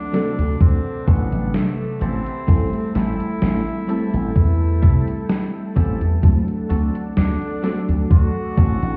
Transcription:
Already playing: F#3 A3 C4 D4 A4 D5 F#5 A5
0.12 C3 F#3 A3 C4 D4 F#4 A4, snare, closed hi-hat
0.39 D2, closed hi-hat
0.61 D2 C4, kick, closed hi-hat
1.07 A1 B3 C4 D4 F#4 A4, kick, closed hi-hat
1.32 A1, closed hi-hat
1.54 A3, snare, closed hi-hat
2.01 A1 C4 E4 G4 A4 E5 G5, closed hi-hat
2.26 closed hi-hat
2.47 A1 G3 A3 C4 E4 A4, kick, closed hi-hat
2.73 closed hi-hat
2.95 A1 C4 E4 G4 A4, snare, closed hi-hat
3.20 muted slap bass stroke, closed hi-hat
3.42 A1, snare, closed hi-hat
3.67 closed hi-hat
3.87 G3 A3 C4 E4 G4 A4, closed hi-hat
4.14 A1, closed hi-hat
4.36 E2, kick, closed hi-hat
4.82 C2 C4 E4 G4 A4, kick, closed hi-hat
5.08 closed hi-hat
5.29 snare, closed hi-hat
5.76 A1 C4 E4 G4 A4, kick, closed hi-hat
6.01 E2, closed hi-hat
6.22 D2 F#3 A3 C4 D4 A4 D5 F#5, kick, closed hi-hat
6.48 closed hi-hat
6.69 D2 C4 D4 F#4 A4, closed hi-hat
6.95 closed hi-hat
7.17 D2 D4, snare, closed hi-hat
7.42 closed hi-hat
7.62 F#3 A3 C4 D4 F#4 A4, snare, closed hi-hat
7.89 D2, closed hi-hat
8.11 D2 F#4, kick, closed hi-hat
8.57 A1 C4 D4 F#4 A4, kick, closed hi-hat
8.82 A1, closed hi-hat

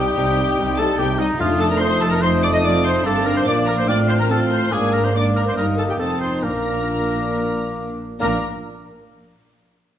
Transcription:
Already playing: C2 C3 G3 D#4 G4 G5 D#6
0.17 C2 C3 G3 D#4
0.39 G3 D#4
0.58 C2 C3 G3 D#4
0.78 G3 D#4 A4 A5
0.98 C2 C3 G3 D#4 G4 G5
1.19 G3 D#4 D#5
1.39 F1 F2 A3 D4 D#4 F4 F5 D#6
1.59 A4 A5
1.70 A#4 A#5
1.79 A3 C4 D#4 C5 C6
1.83 D#6
2.01 A4 A5
2.11 A#4 A#5
2.21 A3 D#4 C5 C6 D#6
2.43 D5 D6
2.53 D#5 D#6
2.65 C4 F4 D5 D6
2.85 C5 C6
3.05 G1 G2 A#3 C4 D4 A4 A5 D6
3.26 A#4 A#5
3.36 C5 C6
3.46 A#1 A#2 A#3 D4 D5 D6
3.66 A#4 A#5
3.77 C5 C6
3.88 A1 A2 A3 C4 D4 F4 D5 D6 F6
4.09 C5 C6
4.19 A#4 A#5
4.30 A3 C4 F4 A4 A5 F6
4.51 C5 C6
4.71 G#1 G#2 A#3 D4 G#4 G#5 D6
4.93 A#4 A#5
5.04 C5 C6
5.14 A#3 D4 D5 D6
5.35 A#4 A#5
5.46 C5 C6
5.56 G1 G2 A#3 D#4 A#4 A#5 D#6
5.77 A4 A5
5.88 G4 G5
5.98 F1 F2 C4 D#4 A4 A5 D#6
6.21 C5 C6
6.43 A#1 A#2 A#3 D4 A#4 A#5 D6
8.19 A#1 A#2 A#3 D4 A#4 A#5 D6

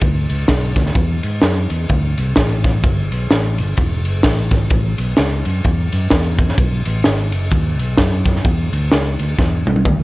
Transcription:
0.01 D2, kick, ride
0.29 C#2, ride
0.48 B1, kick, snare, ride
0.76 D2, kick, snare, ride
0.86 snare
0.95 E2, kick, ride
1.23 G#2, ride
1.42 F#2, snare, ride
1.70 E2, ride
1.89 D2, kick, ride
2.18 C2, ride
2.36 A1, kick, snare, ride
2.64 kick, snare, ride
2.83 G1, kick, ride
3.11 B1, ride
3.30 A1, snare, ride
3.58 G1, ride
3.77 E1, kick, ride
4.05 F#1, ride
4.23 A1, kick, snare, ride
4.51 G#1, kick, snare, ride
4.70 A1, kick, ride
4.98 B1, ride
5.17 C#2, snare, ride
5.45 F#2, ride
5.64 E2, kick, ride
5.92 F#2, ride
6.10 E2, kick, snare, ride
6.38 kick, ride
6.49 snare
6.58 B1, kick, ride
6.85 A1, ride
7.04 G#1, snare, ride
7.32 F#1, ride
7.51 D#2, kick, ride
7.78 B1, ride
7.98 F#2, kick, snare, ride
8.26 kick, snare, ride
8.36 snare
8.45 E2, kick, ride
8.72 D2, ride
8.91 C#2, snare, ride
9.19 D2, ride
9.38 E2, kick, snare
9.65 B1, high tom
9.76 high tom
9.85 D2, kick, mid tom

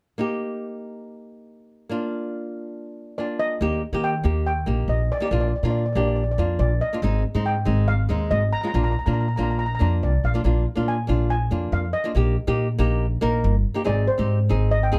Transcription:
0.18 A#3 D#4 G4
1.89 A#3 D4 F4
3.18 A#3 D4 F4 D5
3.39 D#5
3.61 D#2 A#3 D#4 G4
3.93 D#3 A#3 D#4 G4
4.04 G5
4.24 D#2 A#3 D#4 G4
4.47 G5
4.66 A#1 A#3 D#4 G4
4.88 A#1 D#5
5.12 D5
5.18 A#3 D#4 D5
5.22 G4 D5
5.31 A#1 A#3 D4 F4 D5
5.40 D5
5.48 D5
5.56 D5
5.63 A#2 A#3 D4 F4 D5
5.70 D5
5.78 D5
5.86 D5
5.93 A#1 A#3 D4 G4 D5
6.01 D5
6.08 D5
6.16 D5
6.24 D5
6.31 D5
6.38 F2 A#3 D4 F4 D5
6.59 A#1 D5
6.81 D#5
6.93 A#3 D4 F4
7.02 G#1 G#3 C4 D#4
7.35 G#2 G#3 C4 D#4
7.46 G5
7.65 G#1 G#3 C4 D#4
7.88 F5
8.09 D#2 G#3 C4 D#4
8.31 G#1 D#5
8.53 A#5
8.61 G#3 C4 F4 A#5
8.67 A#5
8.74 A#1 A#3 D4 F4 A#5
8.84 A#5
8.92 A#5
8.99 A#5
9.06 A#2 A#3 D4 F4 A#5
9.13 A#5
9.21 A#5
9.28 A#5
9.36 A#1 A#3 D4 F4 A#5
9.43 A#5
9.51 A#5
9.59 A#5
9.66 A#5
9.75 A#5
9.79 F2 A#3 D4 F4 A#5
10.03 C2 D5
10.24 A#1 F5
10.34 A#3 D4 F4
10.44 A#1 A#3 D4 F4
10.75 A#2 A#3 D4 F4
10.88 G#5
11.07 A#1 A#3 D4 F4
11.30 G#5
11.51 F2 A#3 D4 F4
11.72 F2 F5
11.93 D#5
12.04 A#3 D4 F4
12.15 A#1 A#3 D#4 G4
12.47 A#2 A#3 D#4 G4
12.79 A#1 A#3 D#4 G4
13.21 A#1 A#3 D#4 A#4
13.44 G1
13.74 A#3 D#4 G4
13.84 G#1 C4 D#4 G#4 D5
14.07 C5
14.18 G#2 C4 D#4 G4
14.49 G#1 C4 D#4 G#4
14.71 D#5
14.83 G5
14.92 D#2 C4 D#4 G#4

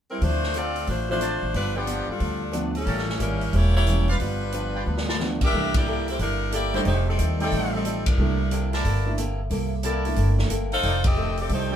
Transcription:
0.11 G3 C4 E4 A#4
0.21 D2 D3 F3 A3 C4 D4 E4 F4 C5, kick, open hi-hat
0.43 snare
0.54 D3 A3 C4 F4 A4 D5, closed hi-hat
0.76 open hi-hat
0.87 A1 D3 A3 C4 D4 F4 C5, kick, open hi-hat
1.09 F3 A3 C4 D4 E4 F4 C5
1.20 D3 A3 C4 F4 C5 D5 A5, closed hi-hat
1.42 A1
1.53 G1 G2 F3 G3 B3 D4 F4 B4, kick, open hi-hat
1.75 F3 B3 D4 F4 G4 B4 D5 G5
1.86 G2 F3 B3 D4, closed hi-hat
2.08 G3 D4 F4 A4, muted upright bass stroke
2.18 D2 G2 F3 B3 D4, kick, open hi-hat
2.52 G2 F3 A3 B3 D4, closed hi-hat
2.75 G3 C#4 E4 A4, open hi-hat
2.85 A1 A2 G3 A#3 C#4 G4 A#4 C#5 A5, kick, open hi-hat
2.98 snare
3.09 snare
3.19 G#1 A2 G3 A#3 C#4 E4 A#4, closed hi-hat
3.41 open hi-hat
3.52 E1 A2 G3 A#3 C#4 E4 G4 C#5, kick, open hi-hat
3.76 A#3 E4 G4 C#5
3.85 A2 E3 G3 A#3 C#4, closed hi-hat
4.08 G3 D4 F4 B4 D5 F5, open hi-hat
4.19 G1 G2 F3 B3 D4, kick, open hi-hat
4.52 G2 F3 B3 D4, closed hi-hat
4.75 F4 B4 D5 G5
4.85 D2 G2 F3 B3 D4
4.97 snare
5.08 F4 B4 D5 A5, snare
5.18 G2 F3 A3 B3 D4, snare
5.41 D4 G4 A#4 E5, kick, crash
5.52 C2 C3 E3 A3 A#3 D4 E4 A4, kick
5.74 A#3 E4 G4 D5, kick, ride
5.86 C3 A#3 E4 A4
6.08 A#3 E4 G4 C5, open hi-hat
6.18 G1 C3 G3 A#3 D4 E4 A4 A#4, kick, open hi-hat
6.51 C3 A#3 E4 G4 A4 D5, closed hi-hat
6.73 G3 A3 A#3 D4 D#4 E4 G4 A4 C5 D5 G5, open hi-hat
6.84 F1 F2 D#3 A3 D4 D#4 G4 C5, kick, open hi-hat
7.09 G3 C4 D#4 A4
7.18 D#2 F2 D#3 A3 D4, closed hi-hat
7.39 G3 A3 C4 D#4 A4 D5 G5, open hi-hat
7.51 A1 F2 D#3 A3 D4, kick, open hi-hat
7.74 G3 C4 D#4 A4
7.85 F2 D#3 A3 D4, closed hi-hat
8.06 G3 D4 E4 A#4, kick, ride
8.18 C2 C3 A3 A#3 D4 E4 A4
8.51 C3 A#3 E4 A4, closed hi-hat
8.73 E4 A#4 D5 A5, snare, open hi-hat
8.84 G1 C3 A#3 E4 A4, kick, open hi-hat
9.05 A3 A#3 D4 E4
9.17 C3 A#3 E4 A4, closed hi-hat
9.50 C2 C3 A#3 E4 A4, kick, open hi-hat
9.83 C3 A#3 E4 A4 A#4 D5 A5, closed hi-hat
10.04 A3 A#3 D4 E4, open hi-hat
10.15 G1 C3 A#3 E4 A4, kick, open hi-hat
10.39 snare
10.50 G1 C3 A#3 E4 A4, closed hi-hat
10.72 D#4 A4 C5 F5, open hi-hat
10.82 F1 F2 D#3 A3 D4 D#4 A4 D5 G5, kick, open hi-hat
11.04 C4 G4 A4 D#5, kick, ride
11.15 F2 D#3 A3 D4
11.37 C4 G4 A4 D5, open hi-hat
11.49 C2 F2 D#3 A3 D4, kick, open hi-hat
11.53 A3 D#4 G4 C5
11.70 A3 D4 D#4 G4 A4 D5 G5

